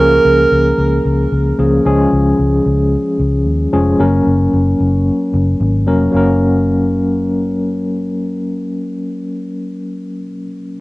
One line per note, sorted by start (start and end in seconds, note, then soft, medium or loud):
0.00 0.17 C#2 loud
0.00 0.74 F3 medium
0.00 0.75 A#3 medium
0.00 0.75 C#4 medium
0.00 0.75 G#4 medium
0.00 1.28 A#4 loud
0.25 0.44 C#2 loud
0.52 0.71 C#2 loud
0.78 0.98 C#2 loud
1.05 1.24 C#2 medium
1.32 1.51 C#2 loud
1.58 1.78 C#2 loud
1.58 1.78 F3 medium
1.58 1.78 A#3 medium
1.58 1.78 C#4 medium
1.58 1.78 G#4 medium
1.85 2.05 C#2 loud
1.85 2.62 F3 medium
1.85 2.62 G#3 medium
1.85 2.62 C#4 medium
1.85 2.63 G#4 loud
2.12 2.32 C#2 loud
2.39 2.58 C#2 medium
2.66 2.95 C#2 loud
3.20 3.46 C#2 loud
3.46 3.66 D#2 loud
3.72 3.92 F1 medium
3.72 3.92 F3 medium
3.72 3.92 G#3 medium
3.72 3.92 C#4 medium
3.72 3.92 G#4 medium
3.99 4.19 F#1 loud
3.99 4.76 F#3 medium
3.99 4.76 A#3 medium
3.99 4.77 C#4 medium
3.99 4.77 A#4 loud
4.27 4.46 F#1 loud
4.53 4.73 F#1 loud
4.80 5.09 F#1 medium
5.34 5.53 F#1 loud
5.60 5.87 G#1 medium
5.87 6.07 F1 medium
5.87 6.06 F#3 medium
5.87 6.06 A#3 medium
5.87 6.07 C#4 medium
5.87 6.07 A#4 medium
6.12 10.20 F#1 medium
6.12 10.18 F#3 medium
6.12 10.19 A#3 medium
6.12 10.21 C#4 medium
6.17 10.23 A#4 medium